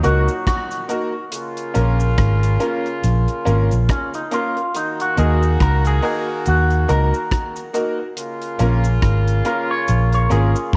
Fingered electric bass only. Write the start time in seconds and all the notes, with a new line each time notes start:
0.05 C#2
1.76 A#1
2.19 G#1
3.04 A#1
3.47 G#1
3.72 A#1
5.18 D#2
5.61 C#2
6.47 D#2
6.90 C#2
8.60 A#1
9.03 G#1
9.89 A#1
10.32 G#1
10.74 A#1